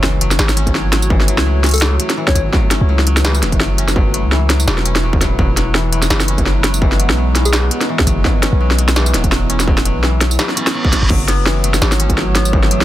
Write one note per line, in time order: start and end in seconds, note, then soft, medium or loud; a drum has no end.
0.00 0.38 F#1 loud
0.00 1.09 E3 medium
0.00 0.20 F#3 medium
0.00 5.35 A3 medium
0.00 0.56 C#4 medium
0.00 11.07 E4 medium
0.00 5.35 F#4 medium
0.00 2.51 C#5 medium
0.00 snare medium
0.00 sub drop medium
0.21 0.38 F#3 medium
0.21 closed hi-hat medium
0.31 snare medium
0.31 tambourine medium
0.39 1.40 G#1 medium
0.39 0.73 F#3 medium
0.39 snare loud
0.49 snare medium
0.49 tambourine medium
0.57 1.63 C#4 medium
0.57 closed hi-hat medium
0.67 kick medium
0.67 closed hi-hat soft
0.75 0.91 F#3 medium
0.75 snare medium
0.93 1.27 F#3 medium
0.93 snare medium
0.93 closed hi-hat medium
1.02 tambourine medium
1.10 2.16 E3 medium
1.10 kick loud
1.20 snare medium
1.28 1.45 F#3 medium
1.28 closed hi-hat medium
1.38 1.99 C#2 loud
1.38 snare medium
1.46 1.81 F#3 medium
1.64 2.71 C#4 medium
1.64 snare medium
1.64 closed hi-hat soft
1.66 closed hi-hat soft
1.69 closed hi-hat soft
1.71 closed hi-hat soft
1.74 1.95 A4 loud
1.74 closed hi-hat soft
1.74 tambourine medium
1.76 closed hi-hat medium
1.78 closed hi-hat medium
1.80 1.98 F#3 medium
1.80 snare loud
1.80 snare medium
1.80 closed hi-hat medium
2.00 2.34 F#3 medium
2.00 closed hi-hat medium
2.10 snare medium
2.10 closed hi-hat soft
2.17 3.23 E3 medium
2.27 2.32 C#5 medium
2.27 kick loud
2.27 snare medium
2.35 2.52 G#1 medium
2.35 2.52 F#3 medium
2.35 2.42 C#5 medium
2.35 kick medium
2.35 closed hi-hat medium
2.35 tambourine soft
2.53 2.88 F#3 medium
2.53 11.06 B4 loud
2.53 kick loud
2.53 snare medium
2.71 3.78 C#4 medium
2.71 snare medium
2.71 closed hi-hat medium
2.81 3.44 C#2 loud
2.89 3.06 F#3 medium
2.99 snare medium
3.07 3.41 F#3 medium
3.07 closed hi-hat medium
3.17 snare medium
3.17 tambourine medium
3.25 4.31 E3 medium
3.25 snare loud
3.35 tambourine medium
3.42 3.54 E1 medium
3.42 3.59 F#3 medium
3.42 snare medium
3.42 closed hi-hat medium
3.52 4.25 F#1 medium
3.52 kick medium
3.52 closed hi-hat soft
3.60 3.95 F#3 medium
3.60 snare medium
3.78 4.85 C#4 medium
3.78 closed hi-hat medium
3.88 snare soft
3.88 tambourine medium
3.96 4.13 F#3 medium
3.96 kick loud
4.14 4.48 F#3 medium
4.14 closed hi-hat medium
4.24 4.66 C#2 loud
4.32 5.44 E3 medium
4.32 snare medium
4.50 4.66 F#3 medium
4.50 snare medium
4.50 closed hi-hat medium
4.60 tambourine medium
4.67 5.38 E1 medium
4.67 5.02 F#3 medium
4.67 snare loud
4.78 snare soft
4.85 6.28 C#4 medium
4.85 closed hi-hat medium
4.85 tambourine soft
4.96 snare medium
4.96 closed hi-hat soft
5.03 5.20 F#3 medium
5.13 kick loud
5.21 5.38 F#3 medium
5.21 kick medium
5.21 snare medium
5.21 closed hi-hat medium
5.21 tambourine soft
5.39 6.09 E1 loud
5.39 5.56 F#3 medium
5.39 11.06 G#3 medium
5.39 11.06 B3 medium
5.39 kick loud
5.57 5.91 F#3 medium
5.57 snare soft
5.57 closed hi-hat medium
5.75 6.80 E3 medium
5.75 snare medium
5.93 6.09 F#3 medium
5.93 closed hi-hat medium
6.02 snare medium
6.02 tambourine medium
6.10 7.11 F#1 medium
6.10 6.45 F#3 medium
6.10 snare loud
6.20 snare medium
6.20 tambourine medium
6.28 7.35 C#4 medium
6.28 closed hi-hat medium
6.38 kick medium
6.38 closed hi-hat soft
6.46 6.63 F#3 medium
6.46 snare medium
6.64 6.98 F#3 medium
6.64 snare medium
6.64 closed hi-hat medium
6.74 tambourine medium
6.82 7.88 E3 medium
6.82 kick loud
6.92 snare medium
7.00 7.16 F#3 medium
7.00 closed hi-hat medium
7.09 7.70 B1 loud
7.09 snare medium
7.17 7.52 F#3 medium
7.35 8.42 C#4 medium
7.35 snare medium
7.35 closed hi-hat medium
7.45 7.66 G#4 medium
7.45 tambourine medium
7.53 7.70 F#3 medium
7.53 snare loud
7.53 snare medium
7.71 8.06 F#3 medium
7.71 closed hi-hat medium
7.81 snare medium
7.81 closed hi-hat soft
7.89 8.95 E3 medium
7.99 kick loud
7.99 snare medium
8.07 8.23 F#1 medium
8.07 8.23 F#3 medium
8.07 kick medium
8.07 closed hi-hat medium
8.07 tambourine soft
8.25 8.59 F#3 medium
8.25 kick loud
8.25 snare medium
8.43 9.49 C#4 medium
8.43 snare medium
8.43 closed hi-hat medium
8.52 9.15 B1 loud
8.61 8.77 F#3 medium
8.71 snare medium
8.78 9.13 F#3 medium
8.78 closed hi-hat medium
8.88 snare medium
8.88 tambourine medium
8.96 10.02 E3 medium
8.96 snare loud
9.06 tambourine medium
9.14 9.25 D1 medium
9.14 9.31 F#3 medium
9.14 snare medium
9.14 closed hi-hat medium
9.24 9.97 E1 medium
9.24 kick medium
9.24 closed hi-hat soft
9.32 9.66 F#3 medium
9.32 snare medium
9.50 10.56 C#4 medium
9.50 closed hi-hat medium
9.60 snare medium
9.60 tambourine medium
9.68 9.84 F#3 medium
9.68 kick loud
9.78 snare medium
9.85 10.20 F#3 medium
9.85 closed hi-hat medium
9.95 10.38 B1 loud
10.03 11.15 E3 medium
10.03 snare medium
10.21 10.38 F#3 medium
10.21 snare medium
10.21 closed hi-hat medium
10.31 tambourine medium
10.39 10.73 F#3 medium
10.39 snare loud
10.39 reverse cymbal medium
10.49 snare medium
10.57 11.99 C#4 medium
10.57 closed hi-hat medium
10.57 tambourine soft
10.67 snare medium
10.67 closed hi-hat soft
10.75 10.91 F#3 medium
10.85 kick loud
10.92 11.09 F#3 medium
10.92 kick medium
10.92 snare medium
10.92 closed hi-hat medium
10.92 tambourine soft
11.03 11.10 G#1 loud
11.10 11.81 F#1 loud
11.10 11.63 F#3 medium
11.10 12.85 F#3 medium
11.10 12.85 A3 medium
11.10 12.85 E4 medium
11.10 12.85 F#4 medium
11.10 12.85 C#5 loud
11.10 kick loud
11.10 crash medium
11.28 12.35 B3 medium
11.28 snare medium
11.28 closed hi-hat medium
11.46 12.52 E3 medium
11.46 snare medium
11.64 11.80 F#3 medium
11.64 closed hi-hat medium
11.74 snare medium
11.74 tambourine medium
11.82 12.83 G#1 medium
11.82 12.16 F#3 medium
11.82 snare loud
11.92 snare medium
11.92 tambourine medium
12.00 12.85 C#4 medium
12.00 closed hi-hat medium
12.10 kick medium
12.10 closed hi-hat soft
12.17 12.70 F#3 medium
12.17 snare medium
12.35 12.85 B3 medium
12.35 snare medium
12.35 closed hi-hat medium
12.45 tambourine medium
12.53 12.85 E3 medium
12.53 kick loud
12.63 snare medium
12.71 12.85 F#3 medium
12.71 closed hi-hat medium
12.81 12.85 C#2 loud
12.81 snare medium